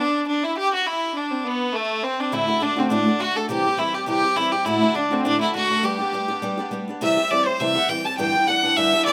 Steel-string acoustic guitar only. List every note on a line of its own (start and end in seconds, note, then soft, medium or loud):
2.32 2.48 D2 medium
2.32 2.48 A2 medium
2.32 2.48 D3 medium
2.32 2.48 A3 medium
2.32 2.47 D4 medium
2.32 2.46 F#4 medium
2.47 2.59 D3 soft
2.47 2.60 A3 soft
2.47 2.61 D4 medium
2.47 2.61 F#4 medium
2.60 2.77 D3 medium
2.60 2.77 A3 medium
2.60 2.76 D4 medium
2.60 2.75 F#4 medium
2.76 2.90 D3 soft
2.76 2.90 A3 soft
2.76 2.90 D4 medium
2.76 2.91 F#4 medium
2.90 3.06 D2 medium
2.90 3.07 A2 medium
2.90 3.07 D3 medium
2.90 3.06 A3 medium
2.90 3.05 D4 medium
2.90 3.04 F#4 medium
3.05 3.18 D3 soft
3.05 3.19 A3 soft
3.05 3.20 D4 soft
3.05 3.20 F#4 medium
3.19 3.36 D3 soft
3.19 3.36 A3 medium
3.19 3.36 D4 medium
3.19 3.34 F#4 medium
3.35 3.49 D3 soft
3.35 3.50 A3 soft
3.35 3.50 D4 soft
3.35 3.49 F#4 soft
3.49 3.65 C3 medium
3.49 3.66 E3 medium
3.49 3.65 G3 medium
3.49 3.64 C4 medium
3.49 3.63 G4 loud
3.64 3.77 G3 soft
3.64 3.78 C4 soft
3.64 3.79 G4 medium
3.77 3.94 E3 medium
3.77 3.95 G3 medium
3.77 3.93 C4 medium
3.77 3.92 G4 medium
3.93 4.07 G3 soft
3.93 4.07 C4 medium
3.93 4.07 G4 soft
4.06 4.23 C3 medium
4.06 4.24 E3 medium
4.06 4.23 G3 medium
4.06 4.22 C4 medium
4.06 4.21 G4 medium
4.22 4.36 G3 soft
4.22 4.37 C4 soft
4.22 4.37 G4 medium
4.36 4.53 E3 medium
4.36 4.53 G3 medium
4.36 4.52 C4 medium
4.36 4.51 G4 medium
4.52 4.66 G3 soft
4.52 4.67 C4 soft
4.52 4.67 G4 soft
4.66 4.82 D2 medium
4.66 4.82 A2 medium
4.66 4.83 D3 medium
4.66 4.82 A3 medium
4.66 4.81 D4 medium
4.66 4.80 F#4 medium
4.81 4.94 D3 medium
4.81 4.94 A3 soft
4.81 4.95 D4 medium
4.81 4.96 F#4 soft
4.95 5.11 D3 medium
4.95 5.11 A3 medium
4.95 5.11 D4 medium
4.95 5.09 F#4 medium
5.11 5.25 D3 soft
5.11 5.25 A3 medium
5.11 5.25 D4 medium
5.11 5.25 F#4 medium
5.25 5.41 D2 medium
5.25 5.41 A2 medium
5.25 5.42 D3 medium
5.25 5.42 A3 medium
5.25 5.41 D4 medium
5.25 5.40 F#4 loud
5.41 5.53 D3 soft
5.41 5.54 A3 soft
5.41 5.55 D4 medium
5.41 5.55 F#4 medium
5.54 5.70 D3 medium
5.54 5.70 A3 medium
5.54 5.69 D4 medium
5.54 5.68 F#4 medium
5.70 5.83 D3 soft
5.70 5.83 A3 soft
5.70 5.83 D4 soft
5.70 5.84 F#4 medium
5.83 6.00 G3 medium
5.83 6.00 B3 medium
5.83 5.99 D4 medium
5.83 5.97 G4 medium
5.99 6.13 B3 soft
5.99 6.13 D4 soft
5.99 6.13 G4 medium
6.13 6.29 G3 medium
6.13 6.30 B3 medium
6.13 6.29 D4 medium
6.13 6.27 G4 medium
6.28 6.42 B3 soft
6.28 6.42 D4 soft
6.28 6.43 G4 medium
6.42 6.59 G3 medium
6.42 6.59 B3 medium
6.42 6.58 D4 medium
6.42 6.56 G4 medium
6.58 6.70 B3 medium
6.58 6.71 D4 medium
6.58 6.72 G4 medium
6.71 6.88 G3 medium
6.71 6.88 B3 medium
6.71 6.88 D4 medium
6.71 6.86 G4 medium
6.88 7.01 B3 soft
6.88 7.02 D4 soft
6.88 7.02 G4 medium
7.01 7.17 C3 medium
7.01 7.17 E3 medium
7.01 7.18 G3 loud
7.01 7.17 C4 medium
7.01 7.15 G4 medium
7.17 7.30 G3 soft
7.17 7.31 C4 soft
7.17 7.31 G4 medium
7.30 7.47 E3 medium
7.30 7.47 G3 medium
7.30 7.47 C4 medium
7.30 7.45 G4 medium
7.46 7.60 G3 soft
7.46 7.60 C4 soft
7.46 7.60 G4 medium
7.60 7.76 C3 medium
7.60 7.76 E3 medium
7.60 7.77 G3 medium
7.60 7.76 C4 medium
7.60 7.74 G4 medium
7.76 7.89 G3 medium
7.76 7.90 C4 medium
7.76 7.89 G4 medium
7.89 8.05 E3 medium
7.89 8.06 G3 medium
7.89 8.05 C4 medium
7.89 8.04 G4 medium
8.05 8.18 G3 soft
8.05 8.19 C4 soft
8.05 8.19 G4 medium
8.18 8.34 G2 medium
8.18 8.35 D3 medium
8.18 8.35 E3 medium
8.18 8.34 G3 medium
8.18 8.34 B3 medium
8.18 8.32 D4 medium
8.33 8.46 E3 soft
8.33 8.47 G3 medium
8.33 8.48 B3 soft
8.33 8.48 D4 medium
8.47 8.64 E3 medium
8.47 8.64 G3 medium
8.47 8.63 B3 medium
8.47 8.62 D4 medium
8.63 8.76 E3 soft
8.63 8.76 G3 soft
8.63 8.77 B3 medium
8.63 8.77 D4 medium
8.76 8.93 G2 medium
8.76 8.93 D3 medium
8.76 8.93 E3 medium
8.76 8.93 G3 medium
8.76 8.92 B3 medium
8.76 8.91 D4 medium
8.92 9.05 E3 soft
8.92 9.06 G3 soft
8.92 9.07 B3 medium
8.92 9.06 D4 medium
9.06 9.13 E3 medium
9.06 9.13 G3 medium
9.06 9.13 B3 medium
9.06 9.13 D4 medium